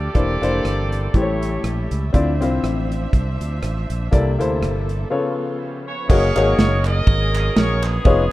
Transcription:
Already playing: string section F3 G3 A3 D4, tonewheel organ A3 F4 G4 D5, horn section G4 A4 D5
0.14 fingered electric bass E1, upright piano E3 A#3 D4 E4 C5, string section E3 A#3 C4, tonewheel organ A#3 D4 E4 C5, kick, closed hi-hat
0.42 fingered electric bass F1, upright piano A#3 D4 E4 C5, closed hi-hat
0.65 fingered electric bass G1, cross-stick, closed hi-hat
0.92 cross-stick, closed hi-hat
1.13 fingered electric bass A1, upright piano A2 A3 E4 G4 C5, tonewheel organ G3 C#4 E4 G4, string section G3 A3 C#4 E5, horn section E4 G4 C#5, kick, closed hi-hat
1.19 tonewheel organ A4, upright piano C#5
1.43 closed hi-hat
1.64 fingered electric bass A#1, cross-stick, closed hi-hat
1.91 fingered electric bass C#2, closed hi-hat
2.13 fingered electric bass D2, upright piano D3 C4 E4 F4 D5, tonewheel organ F3 D4 C5 E5, string section F3 C4 D4, kick, closed hi-hat
2.41 fingered electric bass C2, upright piano C4 E4 F4 C5, closed hi-hat
2.63 fingered electric bass A1, cross-stick, closed hi-hat
2.92 cross-stick, closed hi-hat
3.13 fingered electric bass C2, kick, closed hi-hat
3.40 fingered electric bass D2, closed hi-hat
3.63 fingered electric bass A1, cross-stick, closed hi-hat
3.77 cross-stick
3.90 fingered electric bass A#1, closed hi-hat
4.11 fingered electric bass C2, upright piano C3 A#3 E4 A4 D5, tonewheel organ E3 A#3 D4 A4, string section A#3 A4, kick, closed hi-hat
4.39 fingered electric bass D2, upright piano A#3 E4 A4 C5, closed hi-hat
4.62 fingered electric bass G1, cross-stick, closed hi-hat
4.89 closed hi-hat
5.10 upright piano C#3 B3 F4 A4 C#5, tonewheel organ F3 B3 C#4 A4, string section B3 C#4 F4
5.60 tonewheel organ G4 E5
5.86 tonewheel organ B4, horn section C#5
6.08 fingered electric bass F#1, tonewheel organ F#3 A#3 C#4 D#4 G4, upright piano A#3 D#4 F#4 G#4 C#5, horn section G#4 A#4 C#5, kick, crash
6.14 tonewheel organ G#4
6.36 fingered electric bass G#1, upright piano A#3 D#4 F#4 G#4 C#5, clap, ride
6.58 fingered electric bass F#1, snare, ride
6.85 horn section G#4 A#4 D#5, clap, ride
7.07 fingered electric bass G#1, kick, ride
7.35 clap, ride
7.56 fingered electric bass A#1, horn section C#5, snare, ride
7.83 horn section B3 C#4 G#4, clap, ride
8.05 fingered electric bass F1, tonewheel organ F3 B3 C#4 D#4 G4, upright piano B3 D#4 F4 G#4 C#5, kick, ride
8.11 tonewheel organ G#4

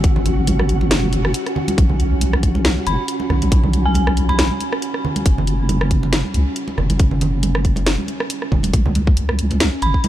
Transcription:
Already playing: analog synth pad C#4, synth texture F#4
0.04 wobble bass G#1, kick, closed hi-hat, muted conga
0.16 low conga
0.26 closed hi-hat, low conga
0.47 closed hi-hat, high conga
0.59 cross-stick
0.69 closed hi-hat
0.81 muted conga
0.91 wobble bass F#1, snare, closed hi-hat
1.03 high conga
1.13 closed hi-hat, muted conga
1.25 cross-stick
1.34 closed hi-hat
1.46 cross-stick, closed hi-hat
1.56 low conga
1.68 closed hi-hat, high conga
1.78 wobble bass B1, kick, closed hi-hat
1.89 low conga
2.00 closed hi-hat
2.21 closed hi-hat, high conga
2.33 cross-stick
2.43 kick, closed hi-hat
2.55 muted conga
2.65 snare, closed hi-hat
2.77 high conga
2.87 wobble bass F#1, synth bell B5, closed hi-hat
3.08 closed hi-hat
3.20 muted conga
3.30 wobble bass B1, cross-stick, low conga
3.42 closed hi-hat, high conga
3.52 wobble bass B1, kick, closed hi-hat, muted conga
3.64 low conga
3.73 closed hi-hat
3.86 synth bell G#5
3.94 closed hi-hat, high conga
4.07 cross-stick
4.17 closed hi-hat
4.29 synth bell B5, muted conga
4.39 snare, closed hi-hat
4.51 high conga
4.60 closed hi-hat, muted conga
4.73 cross-stick
4.82 closed hi-hat
4.94 cross-stick
5.05 low conga
5.16 closed hi-hat, high conga
5.26 wobble bass F#1, kick, closed hi-hat
5.38 low conga
5.47 closed hi-hat
5.69 closed hi-hat, high conga
5.81 cross-stick
5.91 kick, closed hi-hat
6.03 muted conga
6.13 snare, closed hi-hat
6.24 high conga
6.34 wobble bass C#2, closed hi-hat
6.56 closed hi-hat
6.68 muted conga
6.78 wobble bass F#1, cross-stick, low conga
6.90 closed hi-hat, high conga
7.00 wobble bass F#1, kick, closed hi-hat, muted conga
7.11 low conga
7.21 closed hi-hat, low conga
7.43 closed hi-hat, high conga
7.55 cross-stick
7.65 kick, closed hi-hat
7.76 closed hi-hat, muted conga
7.87 snare, closed hi-hat
7.98 high conga
8.08 closed hi-hat, muted conga
8.20 cross-stick
8.30 closed hi-hat
8.42 cross-stick
8.52 wobble bass E1, kick, low conga
8.63 closed hi-hat, high conga
8.73 wobble bass C#2, analog synth pad C#4, kick, closed hi-hat, muted conga
8.86 low conga
8.95 closed hi-hat, high conga
9.07 kick
9.17 closed hi-hat
9.29 cross-stick
9.39 closed hi-hat
9.50 closed hi-hat, muted conga, high conga
9.60 snare, closed hi-hat
9.82 wobble bass G#1, synth bell B5, closed hi-hat
9.94 kick
10.04 closed hi-hat, high conga

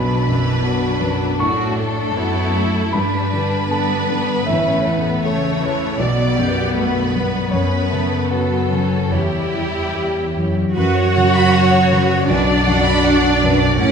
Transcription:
Already playing: grand piano B1 B5, cello section B2, viola section F#3, violin section D4 B4
0.27 grand piano F#2, viola section E3
0.64 viola section F#3, grand piano F#4
1.01 grand piano F#2
1.40 grand piano A2 C#6, cello section A2, viola section A3, violin section F#4
1.79 grand piano A3, violin section A4
2.17 cello section F#2, viola section B3, violin section E4, grand piano F#4
2.55 viola section A3, grand piano A3
2.93 cello section G2, grand piano G2 B5, viola section G3, violin section D4 B4
3.32 grand piano D3, violin section D4
3.70 viola section B3, violin section D4, grand piano A4 A5
4.10 grand piano D3
4.46 grand piano A1 E5, cello section A2, viola section A3, violin section C#4
4.86 grand piano E2, violin section B3
5.22 cello section C#3, violin section A3 C#5, viola section A3, grand piano A4
5.61 grand piano E2, viola section E3
5.98 grand piano B1 D5, cello section B2, viola section F#3, violin section B3 D5
6.37 grand piano F#2, viola section G4
6.74 cello section G2, viola section A3, grand piano F#4, violin section B4
7.13 grand piano F#3, viola section B3
7.51 cello section F#2, grand piano F#2 C#5, violin section C#4 B4
7.91 grand piano C#3, violin section A3
8.30 viola section F#3, violin section B3 A4, grand piano F#4 B4
8.72 grand piano C#3, violin section C#4
9.12 cello section E2, grand piano E2 C#5, viola section G3, violin section E4 G4
9.55 grand piano E3
9.95 cello section E2, grand piano G4
10.37 cello section F#2, grand piano E3
10.76 double bass section F#2, grand piano F#2, viola section F#3, cello section F#4, violin section B4 C#5
10.94 violin section C#5
11.15 grand piano C#3, violin section F#5
11.35 violin section B5
11.52 grand piano F#4, violin section F#5
11.71 violin section C#5
11.91 grand piano C#3, violin section B4
12.11 violin section C#5
12.29 double bass section B1, grand piano B1, cello section D4, violin section B4 D5
12.47 violin section D5
12.65 grand piano F#2, violin section F#5
12.84 violin section B5
13.02 grand piano F#4, violin section F#5
13.22 violin section D5
13.42 grand piano F#2, violin section B4
13.60 violin section D5
13.78 double bass section A1, grand piano A2, viola section A3, cello section C#4, violin section D5 F#5

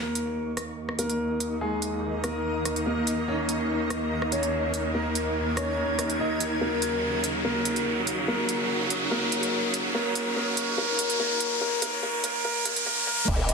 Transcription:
Already playing: string section D#2 D#3 A#3, grand piano A#3 A#4, ambient pad D#4 C#6, riser
0.15 ambient pad A#4, closed hi-hat
0.25 ambient pad D#6
0.38 ambient pad D#5
0.57 cross-stick, closed hi-hat
0.89 cross-stick
0.99 grand piano A#3 A#4, closed hi-hat
1.10 closed hi-hat
1.40 closed hi-hat
1.61 grand piano G#3 G#4
1.82 closed hi-hat
2.24 grand piano A#3 A#4, cross-stick, closed hi-hat
2.65 cross-stick, closed hi-hat
2.76 closed hi-hat
2.86 grand piano A#3 A#4
3.07 closed hi-hat
3.28 grand piano C#4 C#5
3.49 closed hi-hat
3.59 ambient pad G#6
3.90 cross-stick, closed hi-hat
4.22 cross-stick
4.32 grand piano C#4 C#5, closed hi-hat
4.43 closed hi-hat
4.74 closed hi-hat
4.95 grand piano A#3 A#4
5.15 closed hi-hat
5.57 grand piano C#4 C#5, cross-stick, closed hi-hat
5.99 cross-stick, closed hi-hat
6.10 closed hi-hat
6.20 grand piano D#4 D#5
6.40 closed hi-hat
6.61 string section C#3 F#3, grand piano A#3 A#4
6.82 closed hi-hat
6.92 ambient pad D#6
7.24 closed hi-hat
7.45 grand piano A#3 A#4
7.65 closed hi-hat
7.76 closed hi-hat
8.07 ambient pad C#5, closed hi-hat
8.28 grand piano A#3 A#4
8.49 closed hi-hat
8.90 closed hi-hat
9.11 grand piano A#3 A#4
9.32 closed hi-hat
9.43 closed hi-hat
9.74 closed hi-hat
9.95 grand piano A#3 A#4
10.15 closed hi-hat
10.25 ambient pad G#6
10.36 grand piano A#3 A#4
10.57 closed hi-hat
10.78 grand piano A#3 A#4
10.99 closed hi-hat
11.10 closed hi-hat
11.20 grand piano A#3 A#4
11.40 closed hi-hat
11.61 grand piano A#3 A#4
11.82 grand piano A#3 A#4, closed hi-hat
12.03 grand piano A#3 A#4
12.24 grand piano A#3 A#4, closed hi-hat
12.45 grand piano A#3 A#4
12.65 grand piano A#3 A#4, closed hi-hat
12.76 closed hi-hat
12.86 grand piano A#3 A#4
13.07 grand piano A#3 A#4
13.28 wobble bass D#1, string section D#3 A#3 A#4, kick, crash
13.49 closed hi-hat

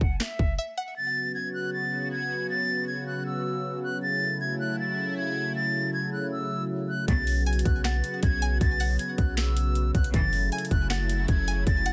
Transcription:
Already playing: synth pluck F#5
0.01 808-style bass F#1, flute F#5, kick
0.20 flute E5, snare, clap, closed hi-hat
0.39 808-style bass F#1, kick
0.58 synth pluck E5
0.78 synth pluck F#5, flute F#5
0.96 analog synth pad C#3 F#3 B3 F#4, flute A6
1.35 flute G#6
1.54 flute F#6
1.73 flute A6
2.11 flute G#6
2.50 flute A6
2.88 flute G#6
3.07 flute F#6
3.26 flute E6
3.84 flute F#6
4.02 analog synth pad A3 E4, flute A6
4.41 flute G#6
4.60 flute F#6
4.79 flute A6
5.17 flute G#6
5.55 flute A6
5.93 flute G#6
6.13 flute F#6
6.32 flute E6
6.89 flute F#6
7.08 808-style bass B1, string section B2 C#3 F#3, analog synth pad B3 F#4, flute A6, kick, closed hi-hat
7.27 open hi-hat
7.46 synth pluck G#5, flute G#6, closed hi-hat
7.53 closed hi-hat
7.59 closed hi-hat
7.65 808-style bass B1, flute F#6, kick, closed hi-hat
7.85 synth pluck F#5, flute A6, snare, clap, closed hi-hat
8.04 closed hi-hat
8.23 808-style bass B1, flute G#6, kick, closed hi-hat
8.42 synth pluck G#5, closed hi-hat
8.61 808-style bass B1, flute A6, kick, closed hi-hat
8.80 synth pluck F#5, open hi-hat
8.99 flute G#6, closed hi-hat
9.18 808-style bass B1, flute F#6, kick, closed hi-hat
9.37 flute E6, snare, clap, closed hi-hat
9.57 closed hi-hat
9.75 closed hi-hat
9.95 808-style bass B1, flute F#6, kick, closed hi-hat
10.04 closed hi-hat
10.14 808-style bass F#1, string section A2 C#3 E3, analog synth pad C#3 F#3 A3 E4, flute A6, kick, closed hi-hat
10.33 open hi-hat
10.52 synth pluck G#5, flute G#6, closed hi-hat
10.58 closed hi-hat
10.65 closed hi-hat
10.71 808-style bass F#1, flute F#6, kick, closed hi-hat
10.90 synth pluck F#5, flute A6, snare, clap, closed hi-hat
11.09 closed hi-hat
11.28 808-style bass F#1, flute G#6, kick, closed hi-hat
11.48 synth pluck G#5, closed hi-hat
11.67 808-style bass F#1, flute A6, kick, closed hi-hat
11.86 synth pluck F#5, closed hi-hat, open hi-hat

